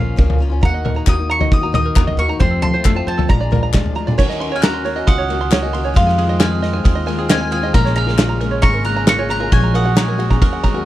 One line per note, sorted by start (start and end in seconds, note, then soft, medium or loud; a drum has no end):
0.00 0.16 A#1 medium
0.00 0.16 F3 medium
0.00 0.17 A#3 medium
0.00 0.17 C#4 medium
0.00 0.18 F4 medium
0.00 0.37 F5 medium
0.16 0.60 C#2 loud
0.16 0.39 A#2 medium
0.16 0.37 F3 medium
0.16 0.39 A#3 medium
0.16 0.40 C#4 medium
0.16 0.41 F4 medium
0.16 kick loud
0.30 floor tom medium
0.39 0.51 F3 medium
0.39 0.51 A#3 medium
0.39 0.50 C#4 medium
0.39 0.48 F4 medium
0.50 0.61 A#3 soft
0.50 0.63 C#4 soft
0.50 0.62 F4 medium
0.61 1.04 D#2 loud
0.61 0.95 D#3 medium
0.61 0.96 A#3 medium
0.61 0.95 D#4 medium
0.61 0.93 F#4 medium
0.61 1.09 F#5 medium
0.61 0.95 A#5 medium
0.61 kick loud
0.61 floor tom medium
0.74 1.06 D#5 medium
0.85 1.29 A#4 medium
0.85 floor tom medium
0.85 mid tom medium
0.95 1.06 A#3 soft
0.95 1.06 D#4 soft
0.95 1.06 F#4 soft
0.95 1.28 A#5 medium
1.06 1.49 D#2 medium
1.06 1.17 D#3 medium
1.06 1.18 A#3 medium
1.06 1.18 D#4 medium
1.06 1.16 F#4 medium
1.06 1.40 D#5 medium
1.06 1.31 D#6 loud
1.06 kick loud
1.06 clap medium
1.17 1.41 A#3 soft
1.17 1.40 D#4 soft
1.17 1.38 F#4 medium
1.30 1.62 A#5 medium
1.30 1.53 C#6 loud
1.39 1.64 A#3 soft
1.39 1.62 D#4 soft
1.39 1.60 F#4 medium
1.39 1.73 D#5 medium
1.39 floor tom medium
1.51 1.93 D#2 loud
1.51 1.73 D#6 medium
1.51 kick loud
1.61 1.73 A#3 soft
1.61 1.74 D#4 medium
1.61 1.73 F#4 medium
1.61 1.95 A#5 medium
1.72 1.94 D#3 medium
1.72 1.95 A#3 medium
1.72 1.96 D#4 medium
1.72 1.97 F#4 medium
1.72 2.06 D#5 medium
1.72 2.15 D#6 loud
1.72 floor tom medium
1.72 mid tom medium
1.86 2.17 A#4 medium
1.96 2.16 D#2 medium
1.96 2.16 D#3 medium
1.96 2.18 A#3 medium
1.96 2.18 D#4 medium
1.96 2.19 F#4 medium
1.96 2.28 A#5 medium
1.96 kick loud
1.96 clap medium
2.07 2.39 D#5 medium
2.07 floor tom medium
2.17 2.38 D#2 medium
2.17 2.29 D#3 medium
2.17 2.29 A#3 medium
2.17 2.29 D#4 medium
2.17 2.40 A#4 medium
2.17 2.40 C#6 medium
2.21 2.27 F#4 medium
2.28 2.41 A#3 soft
2.28 2.41 D#4 soft
2.28 2.40 F#4 medium
2.28 2.40 A#5 medium
2.39 2.73 F2 medium
2.39 2.61 F2 loud
2.39 2.73 C3 medium
2.39 2.74 F3 medium
2.39 2.74 A3 medium
2.39 2.73 C4 medium
2.39 2.72 F4 medium
2.39 2.73 C5 medium
2.39 2.61 C6 medium
2.39 kick loud
2.39 floor tom medium
2.51 2.84 A4 medium
2.62 2.72 F3 loud
2.62 2.95 A5 medium
2.62 3.08 C6 medium
2.62 floor tom medium
2.73 2.84 F3 soft
2.73 2.84 A3 soft
2.73 2.85 C4 soft
2.73 2.84 F4 medium
2.73 3.06 C5 medium
2.84 2.95 F2 medium
2.84 3.06 F2 medium
2.84 2.96 C3 medium
2.84 2.96 F3 medium
2.84 2.96 A3 medium
2.84 2.95 C4 medium
2.84 2.94 F4 medium
2.84 3.16 A4 medium
2.84 kick loud
2.84 clap medium
2.95 3.28 F3 soft
2.95 3.30 A3 soft
2.95 3.29 C4 medium
2.95 3.29 F4 medium
2.95 3.29 A5 medium
3.07 3.28 F2 medium
3.07 3.29 C5 medium
3.07 3.30 A5 medium
3.17 3.29 A4 medium
3.17 floor tom medium
3.28 3.71 A#1 medium
3.28 3.40 A#2 medium
3.28 3.40 F3 medium
3.28 3.41 G#3 medium
3.28 3.41 D4 medium
3.28 3.39 F4 medium
3.28 3.62 A#5 medium
3.28 3.71 A#5 medium
3.28 kick loud
3.40 3.51 G#3 soft
3.40 3.52 D4 soft
3.40 3.51 F4 medium
3.40 3.73 D5 medium
3.51 3.73 F3 medium
3.51 3.74 G#3 medium
3.51 3.74 D4 medium
3.51 3.75 F4 medium
3.51 3.96 A#4 medium
3.51 floor tom medium
3.51 mid tom medium
3.63 3.95 A#5 medium
3.73 4.16 D2 loud
3.73 3.96 A#2 medium
3.73 3.94 F3 medium
3.73 3.95 G#3 medium
3.73 3.96 D4 medium
3.73 3.97 F4 medium
3.73 4.06 D5 medium
3.73 kick loud
3.73 snare medium
3.73 clap medium
3.73 mid tom medium
3.86 floor tom medium
3.95 4.06 F3 medium
3.95 4.07 G#3 medium
3.95 4.08 D4 medium
3.95 4.06 F4 medium
3.95 4.18 A#5 medium
4.07 4.18 G#3 soft
4.07 4.18 D4 medium
4.07 4.18 F4 medium
4.07 4.18 D5 medium
4.07 mid tom medium
4.17 5.03 D#2 medium
4.17 4.51 D#3 medium
4.17 7.70 D#3 medium
4.17 4.51 A#3 medium
4.17 5.94 C#4 medium
4.17 4.52 C#4 medium
4.17 5.94 F#4 medium
4.17 4.49 F#4 loud
4.17 4.51 C#5 medium
4.17 kick loud
4.17 crash loud
4.29 4.74 D#5 medium
4.29 snare soft
4.40 4.72 C6 medium
4.40 ride medium
4.50 4.62 A#3 soft
4.50 4.63 C#4 soft
4.50 4.62 F#4 medium
4.50 4.84 C#5 medium
4.56 4.62 G#5 medium
4.56 4.62 F6 medium
4.61 4.83 D#3 medium
4.61 4.84 A#3 medium
4.61 4.85 C#4 medium
4.61 4.86 F#4 medium
4.61 5.09 A#5 loud
4.61 5.03 F#6 medium
4.61 snare loud
4.61 clap medium
4.61 ride medium
4.74 5.06 C6 medium
4.84 4.96 D#3 medium
4.84 4.96 A#3 medium
4.84 4.97 C#4 medium
4.84 4.94 F#4 medium
4.84 5.17 C#5 medium
4.84 ride medium
4.96 5.29 A#3 soft
4.96 5.29 C#4 medium
4.96 5.29 F#4 medium
4.96 5.40 D#5 medium
5.07 5.92 C#2 medium
5.07 5.96 F#5 medium
5.07 5.40 C6 medium
5.07 5.92 D#6 medium
5.07 kick loud
5.07 ride medium
5.18 5.51 C#5 medium
5.28 5.40 D#3 medium
5.28 5.40 A#3 medium
5.28 5.40 C#4 medium
5.28 5.37 F#4 medium
5.28 ride medium
5.39 5.50 A#3 soft
5.39 5.51 C#4 soft
5.39 5.50 F#4 soft
5.39 5.72 C6 medium
5.50 5.62 D#3 medium
5.50 5.62 A#3 medium
5.50 5.63 C#4 medium
5.50 5.61 F#4 medium
5.50 5.83 C#5 medium
5.50 snare loud
5.50 clap medium
5.50 ride medium
5.62 5.73 A#3 soft
5.62 5.74 C#4 medium
5.62 5.73 F#4 medium
5.62 5.96 D#5 medium
5.73 5.84 D#3 medium
5.73 5.85 A#3 medium
5.73 5.84 C#4 medium
5.73 5.82 F#4 medium
5.73 5.96 C6 medium
5.73 ride medium
5.84 5.95 A#3 soft
5.84 5.96 C#4 medium
5.84 5.95 F#4 medium
5.84 5.96 C#5 medium
5.94 6.28 F2 medium
5.94 6.81 F2 loud
5.94 6.28 C3 medium
5.94 6.29 D#3 medium
5.94 7.72 G#3 medium
5.94 6.29 G#3 medium
5.94 6.27 C4 medium
5.94 7.72 F4 medium
5.94 6.26 F4 medium
5.94 6.37 F5 medium
5.94 6.38 C6 medium
5.94 kick loud
5.94 ride medium
6.07 6.38 G#5 medium
6.07 snare soft
6.18 6.50 G#4 medium
6.18 ride medium
6.27 6.39 D#3 soft
6.27 6.39 G#3 soft
6.27 6.40 C4 soft
6.27 6.39 F4 medium
6.27 6.61 D#5 medium
6.39 6.62 F2 medium
6.39 6.62 C3 medium
6.39 6.60 D#3 medium
6.39 6.62 G#3 medium
6.39 6.63 C4 medium
6.39 6.63 F4 medium
6.39 6.72 G#5 medium
6.39 7.26 G#5 medium
6.39 7.25 F6 medium
6.39 snare loud
6.39 clap medium
6.39 ride medium
6.51 6.83 G#4 medium
6.61 6.73 D#3 medium
6.61 6.74 G#3 medium
6.61 6.73 C4 medium
6.61 6.72 F4 medium
6.61 6.94 D#5 medium
6.61 snare soft
6.61 ride medium
6.73 7.05 D#3 soft
6.73 7.06 G#3 soft
6.73 7.07 C4 soft
6.73 7.07 F4 medium
6.73 7.06 G#5 medium
6.84 7.70 D#2 medium
6.84 7.17 G#4 medium
6.84 kick loud
6.84 ride medium
6.95 7.29 D#5 medium
7.06 7.18 D#3 medium
7.06 7.18 G#3 medium
7.06 7.17 C4 medium
7.06 7.16 F4 medium
7.06 7.40 G#5 medium
7.06 ride medium
7.17 7.28 D#3 soft
7.17 7.29 G#3 soft
7.17 7.29 C4 medium
7.17 7.29 F4 medium
7.17 7.51 G#4 medium
7.28 7.40 F2 medium
7.28 7.40 C3 medium
7.28 7.40 D#3 medium
7.28 7.41 G#3 medium
7.28 7.40 C4 medium
7.28 7.39 F4 medium
7.28 7.62 D#5 medium
7.28 7.51 G#5 medium
7.28 7.50 F6 medium
7.28 snare loud
7.28 clap loud
7.28 ride medium
7.40 7.50 D#3 soft
7.40 7.52 G#3 soft
7.40 7.52 C4 soft
7.40 7.51 F4 medium
7.40 7.74 G#5 medium
7.51 7.62 D#3 medium
7.51 7.63 G#3 medium
7.51 7.63 C4 medium
7.51 7.62 F4 medium
7.51 7.74 G#4 medium
7.51 7.74 G#5 medium
7.51 7.72 F6 medium
7.51 ride medium
7.63 7.75 D#3 soft
7.63 7.74 G#3 medium
7.63 7.75 C4 soft
7.63 7.74 F4 medium
7.63 7.74 D#5 medium
7.73 8.59 A#1 loud
7.73 8.07 A#2 medium
7.73 9.50 C#3 medium
7.73 8.08 F3 medium
7.73 8.08 G#3 medium
7.73 10.85 A#3 medium
7.73 8.07 C#4 medium
7.73 8.05 F4 medium
7.73 10.85 G#4 medium
7.73 8.06 A#4 medium
7.73 7.94 A#5 loud
7.73 7.95 F6 medium
7.73 kick loud
7.73 ride medium
7.85 8.30 C#5 medium
7.85 snare soft
7.96 8.37 A#5 medium
7.96 8.28 A#5 medium
7.96 8.39 F6 medium
7.96 ride medium
8.07 8.19 G#3 soft
8.07 8.19 C#4 soft
8.07 8.18 F4 medium
8.07 8.39 A#4 medium
8.07 snare soft
8.18 8.41 A#2 medium
8.18 8.39 F3 medium
8.18 8.41 G#3 medium
8.18 8.42 C#4 medium
8.18 8.42 F4 medium
8.18 snare loud
8.18 clap medium
8.18 ride medium
8.29 8.61 A#5 medium
8.40 8.83 F3 medium
8.40 8.85 G#3 medium
8.40 8.86 C#4 medium
8.40 8.87 F4 medium
8.40 8.72 A#4 medium
8.40 ride medium
8.51 8.96 C#5 medium
8.62 9.48 G#1 medium
8.62 8.95 A#5 medium
8.62 8.83 C#6 loud
8.62 8.84 A#6 medium
8.62 kick loud
8.62 ride medium
8.74 9.06 A#4 medium
8.85 9.07 F3 medium
8.85 9.08 G#3 medium
8.85 9.08 C#4 medium
8.85 9.08 F4 medium
8.85 9.08 A#5 medium
8.85 9.06 F#6 medium
8.85 ride medium
8.96 9.29 A#5 medium
9.07 9.19 A#2 medium
9.07 9.19 F3 medium
9.07 9.19 G#3 medium
9.07 9.19 C#4 medium
9.07 9.17 F4 medium
9.07 9.39 A#4 medium
9.07 9.29 C#6 medium
9.07 9.28 A#6 medium
9.07 snare loud
9.07 clap loud
9.07 ride medium
9.19 9.29 G#3 soft
9.19 9.30 C#4 soft
9.19 9.30 F4 medium
9.19 9.52 C#5 medium
9.29 9.40 F3 medium
9.29 9.41 G#3 medium
9.29 9.40 C#4 medium
9.29 9.39 F4 medium
9.29 9.52 A#5 medium
9.29 9.53 A#5 medium
9.29 9.51 F#6 medium
9.29 ride medium
9.40 9.52 G#3 soft
9.40 9.52 C#4 medium
9.40 9.52 F4 medium
9.40 9.52 A#4 medium
9.52 10.38 A#1 loud
9.52 9.85 A#2 medium
9.52 10.85 F#3 medium
9.52 9.86 F#3 medium
9.52 9.86 G#3 medium
9.52 9.85 C#4 medium
9.52 9.83 F#4 medium
9.52 9.73 G#5 loud
9.52 9.73 C#6 medium
9.52 kick loud
9.52 ride medium
9.63 9.95 A#5 medium
9.74 10.07 A#4 medium
9.74 9.98 F#5 medium
9.74 9.96 D#6 medium
9.74 ride medium
9.85 9.96 G#3 soft
9.85 9.96 C#4 soft
9.85 9.96 F#4 soft
9.85 10.18 F#5 medium
9.95 10.18 A#2 medium
9.95 10.17 F#3 medium
9.95 10.18 G#3 medium
9.95 10.19 C#4 medium
9.95 10.20 F#4 medium
9.95 10.39 G#5 medium
9.95 10.29 A#5 loud
9.95 10.39 C#6 medium
9.95 snare loud
9.95 clap medium
9.95 ride medium
10.08 10.40 A#4 medium
10.18 10.30 F#3 medium
10.18 10.30 G#3 medium
10.18 10.30 C#4 medium
10.18 10.28 F#4 medium
10.18 10.51 F#5 medium
10.18 ride medium
10.30 10.63 G#3 soft
10.30 10.64 C#4 soft
10.30 10.63 F#4 medium
10.30 10.62 A#5 medium
10.30 kick medium
10.42 10.85 D#2 medium
10.42 10.73 A#4 medium
10.42 kick loud
10.42 ride medium
10.53 10.85 F#5 medium
10.63 10.75 F#3 medium
10.63 10.75 G#3 medium
10.63 10.75 C#4 medium
10.63 10.73 F#4 medium
10.63 10.85 A#5 medium
10.63 kick medium
10.63 ride medium
10.74 10.85 G#3 soft
10.74 10.85 C#4 soft
10.74 10.85 F#4 medium
10.74 10.85 A#4 medium